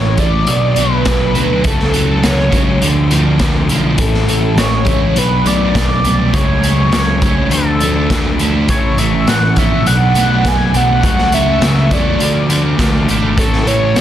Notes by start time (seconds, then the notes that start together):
Already playing: A1 A2 E3 A3 C#4 E4 C#5
0.16 A1 E3 A3 C#4 E4 D5, kick, closed hi-hat
0.31 A3 C#4 E4
0.45 B1 B2 F#3 B3 D4, closed hi-hat
0.74 B1 B2 F#3 B3 D4, closed hi-hat
0.79 B4
0.89 F#3 B3 D4
1.03 B1 B2 F#3 B3 D4, kick, snare, closed hi-hat
1.34 D2 B2 F#3 B3 D4, closed hi-hat
1.49 F#3 B3 D4
1.64 C#2 C#3 F#3 A3 A4, kick, closed hi-hat
1.68 C#4
1.80 snare
1.93 C#3 F#3 A3 C#4, closed hi-hat
2.07 F#3 A3 C#4 A4
2.22 C#2 C#3 F#3 A3 C#4 C#5, snare, closed hi-hat
2.52 C#2 C#3 F#3 A3, kick, closed hi-hat
2.56 C#4
2.66 F#3 A3 C#4
2.82 D2 D3 F3 A3 D4, closed hi-hat
3.11 D3 F3 A3 D4, closed hi-hat
3.25 F3 A3 D4
3.38 D2 D3 F3 A3 D4, kick, snare, closed hi-hat
3.69 B1 D3 F3 A3 D4, closed hi-hat
3.82 F3 A3 D4
3.96 A1 A2 E3 A3 C#4 E4, kick, closed hi-hat
4.00 A4
4.14 snare
4.25 A1 E3 A3 C#4 E4, closed hi-hat
4.29 E3
4.41 A3 C#4 E4
4.54 A1 A2 E3 A3 C#4, snare, closed hi-hat
4.58 E4 C#5
4.85 C#2 E3 A3 C#4 E4, kick, closed hi-hat
5.00 A3 C#4 E4
5.15 B1 B2 F#3 B3 D4 B4, closed hi-hat
5.45 B1 B2 F#3 A3 B3 D4 D5, closed hi-hat
5.61 F#3 B3 D4
5.75 B1 B2 F#3 B3, kick, snare, closed hi-hat
5.79 D4
6.04 C2 B2 F#3 A3 B3, closed hi-hat
6.09 D4
6.19 F#3 B3 D4
6.34 C#2 C#3 F#3 A3 C#4 C#5, kick, closed hi-hat
6.63 C#3 F#3 A3 C#4, closed hi-hat
6.79 F#3 A3 C#4
6.91 C#2 C#3 F#3 A3 C#5, snare, closed hi-hat
6.96 C#4
7.22 C#2 C#3 F#3 A3 C#4, kick, closed hi-hat
7.38 F#3 A3 C#4
7.50 D2 D3 F3 A4, closed hi-hat
7.54 A3 D4
7.81 D3 F3 A3, closed hi-hat
7.85 D4
7.95 F3 A3 D4
8.09 D2 D3 F3 A3 D4, kick, snare, closed hi-hat
8.39 D2 D3 F3 A3 D4, closed hi-hat
8.54 F3 A3 D4
8.68 A1 A2 E3 A3 C#4 E4 A4 C#5 E5 C#6, kick, closed hi-hat
8.97 A1 E3 A3 C#4 E5, closed hi-hat
9.02 E4
9.12 A3 C#4 E4
9.27 A1 A2 E3 A3 C#4 E4 F#5, snare, closed hi-hat
9.56 A#1 E3 A3 C#4 E4 E5, kick, closed hi-hat
9.72 A3 C#4 E4
9.85 B1 B2 F#3 B3 D4 A4 D5 F#5 B5, closed hi-hat
10.14 B1 B2 F#3 A3 B3 D4, closed hi-hat
10.29 F#3 B3 D4
10.45 B1 B2 F#3 B3 D4 G#5, kick, snare, closed hi-hat
10.73 B1 B2 F#3 A3 B3 D4 F#5, closed hi-hat
10.88 F#3 B3 D4
11.02 C#2 C#3 F#3 A3 C#4 C#5 F#5 C#6, kick, closed hi-hat
11.18 snare
11.31 C#3 F#3 A3 C#4 E5, closed hi-hat
11.47 F#3 A3 C#4
11.61 C#2 C#3 F#3 A3 C#4, snare, closed hi-hat
11.90 E2 C#3 F#3 A3 C#4 D5, kick, closed hi-hat
12.05 F#3 A3 C#4
12.18 D2 D3 F3 A3 F5, closed hi-hat
12.23 D4 D5 D6
12.49 D3 F3 A3 D4, closed hi-hat
12.64 F3 A3 D4
12.78 D2 D3 F3 A3 D4, kick, snare, closed hi-hat
13.06 G#1 D3 F3 A3 D4, closed hi-hat
13.21 F3 A3 D4
13.35 A1 A2 E3 A3 C#4 E4 A4, kick, closed hi-hat
13.39 A2 C#5 E5 C#6
13.53 snare
13.64 A1 E3 A3 C#4 E4 C#5, closed hi-hat
13.68 E3
13.79 A3 C#4 E4
13.93 A1 A2 E3 A3 C#4 E4, snare, closed hi-hat